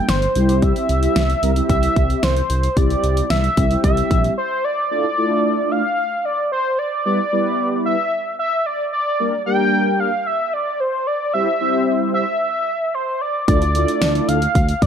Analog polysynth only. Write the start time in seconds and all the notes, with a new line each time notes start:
0.36 G3 C4 E4 G4
1.43 G3 C4 E4 A#4
1.56 G3 C4 E4 G4
2.77 G3 C4 E4 G4
3.57 G3 C4 E4 G4
3.71 G3 C4 E4 G4
4.91 A3 D4 E4 F4 A4
5.18 A3 D4 E4 F4 A4
7.05 G3 B3 E4 G4 B4
7.32 G3 B3 E4 G4 B4
9.20 G3 A#3 D4 G4 A#4
9.46 G3 A#3 D4 G4 A#4
11.34 G3 C4 E4 G4 C5
11.60 G3 C4 E4 G4 C5
13.48 A3 D4 E4 F4 A4
13.75 A3 D4 E4 F4 A4